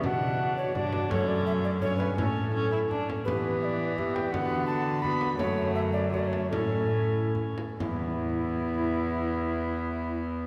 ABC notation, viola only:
X:1
M:3/4
L:1/8
Q:1/4=166
K:Edor
V:1 name="Viola"
D4 D2 | C4 C2 | C2 C E D C | B,4 B,2 |
B,4 B,2 | A,4 A,2 | C4- C z | B,6- |
B,6 |]